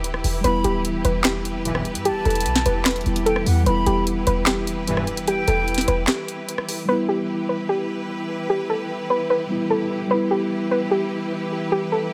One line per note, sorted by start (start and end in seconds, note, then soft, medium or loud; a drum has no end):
0.00 0.23 D1 loud
0.00 6.84 E3 medium
0.00 3.62 E4 medium
0.00 0.40 G4 medium
0.00 6.84 G4 medium
0.00 0.40 B4 medium
0.04 closed hi-hat medium
0.14 cross-stick medium
0.24 0.43 E1 loud
0.24 open hi-hat medium
0.41 0.63 E1 loud
0.41 3.00 G3 medium
0.41 3.02 B3 medium
0.41 3.63 B4 medium
0.41 0.63 B4 loud
0.41 0.82 B5 loud
0.41 closed hi-hat medium
0.47 3.04 E4 medium
0.64 1.03 D1 loud
0.64 0.83 G4 medium
0.64 closed hi-hat medium
0.85 closed hi-hat medium
1.05 1.97 E1 loud
1.05 1.23 B4 medium
1.05 closed hi-hat medium
1.24 2.01 G4 medium
1.24 cross-stick medium
1.24 snare loud
1.24 clap medium
1.24 closed hi-hat medium
1.45 closed hi-hat medium
1.65 1.82 B1 loud
1.65 1.82 G2 medium
1.65 1.82 E3 loud
1.65 closed hi-hat medium
1.75 cross-stick loud
1.85 closed hi-hat medium
1.95 2.12 G2 loud
1.95 closed hi-hat medium
2.05 2.24 G4 loud
2.05 2.82 A5 loud
2.05 closed hi-hat medium
2.10 2.25 E1 loud
2.25 2.47 E1 loud
2.25 2.44 A4 medium
2.25 closed hi-hat soft
2.30 closed hi-hat medium
2.35 closed hi-hat medium
2.41 closed hi-hat medium
2.46 2.65 B1 loud
2.46 closed hi-hat medium
2.56 snare medium
2.66 3.04 E1 loud
2.66 2.84 B4 medium
2.66 closed hi-hat medium
2.85 3.24 B4 medium
2.85 cross-stick medium
2.85 snare loud
2.85 clap medium
2.85 closed hi-hat medium
2.91 closed hi-hat medium
2.96 closed hi-hat medium
3.01 3.62 G3 soft
3.01 closed hi-hat soft
3.06 3.45 E1 loud
3.06 3.65 B3 soft
3.06 3.67 E4 medium
3.06 closed hi-hat soft
3.16 closed hi-hat medium
3.26 3.64 A4 medium
3.26 3.45 G5 medium
3.26 closed hi-hat medium
3.36 cross-stick medium
3.46 3.66 E2 loud
3.46 3.66 F#5 medium
3.46 open hi-hat medium
3.63 3.86 E1 loud
3.63 6.83 G3 medium
3.63 6.85 B3 medium
3.63 6.85 E4 medium
3.63 3.85 B4 medium
3.63 6.85 B4 loud
3.63 4.04 B5 loud
3.63 closed hi-hat medium
3.70 6.86 E4 medium
3.86 4.25 E1 loud
3.86 4.05 G4 medium
3.86 closed hi-hat medium
4.07 closed hi-hat medium
4.27 5.44 E1 loud
4.27 4.45 B4 medium
4.27 closed hi-hat medium
4.46 5.23 G4 medium
4.46 cross-stick medium
4.46 snare loud
4.46 clap medium
4.46 closed hi-hat medium
4.67 closed hi-hat medium
4.87 5.04 B1 loud
4.87 5.04 G2 loud
4.87 5.04 E3 loud
4.87 closed hi-hat medium
4.97 cross-stick loud
5.07 closed hi-hat medium
5.17 closed hi-hat medium
5.28 5.46 G4 loud
5.28 6.04 G5 loud
5.28 closed hi-hat medium
5.48 5.86 E1 loud
5.48 5.66 A4 medium
5.48 closed hi-hat medium
5.68 closed hi-hat medium
5.74 snare medium
5.74 closed hi-hat medium
5.81 closed hi-hat medium
5.88 6.07 E1 loud
5.88 6.07 B4 medium
5.88 closed hi-hat medium
6.07 6.85 G4 medium
6.07 cross-stick medium
6.07 snare loud
6.07 clap medium
6.07 closed hi-hat medium
6.28 closed hi-hat medium
6.49 closed hi-hat medium
6.58 cross-stick medium
6.69 open hi-hat medium
6.85 12.13 E3 medium
6.85 9.45 G3 medium
6.85 9.46 B3 medium
6.85 12.13 E4 medium
6.85 12.13 G4 medium
6.85 10.07 B4 medium
6.85 7.07 B4 loud
6.92 9.48 E4 medium
7.09 7.27 G4 medium
7.49 7.68 B4 medium
7.69 8.46 G4 medium
8.50 8.68 G4 loud
8.70 8.88 A4 medium
9.10 9.29 B4 medium
9.30 9.68 B4 medium
9.49 10.06 G3 soft
9.49 10.09 B3 soft
9.49 10.11 E4 medium
9.70 10.08 A4 medium
10.07 12.13 G3 medium
10.07 12.13 B3 medium
10.07 10.29 B4 loud
10.07 12.13 B4 loud
10.14 12.13 E4 medium
10.31 10.49 G4 medium
10.71 10.90 B4 medium
10.91 11.68 G4 medium
11.72 11.90 G4 loud
11.92 12.11 A4 medium